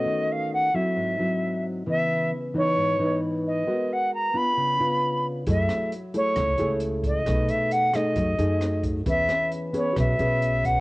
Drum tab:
HH |--------|--------|--------|xxxxxxxx|
SD |--------|--------|--------|-r--r---|
BD |--------|--------|--------|o---o--o|

HH |xxxxxxxx|xxxxxxxx|
SD |r--r--r-|-r--r---|
BD |o---o--o|o---o--o|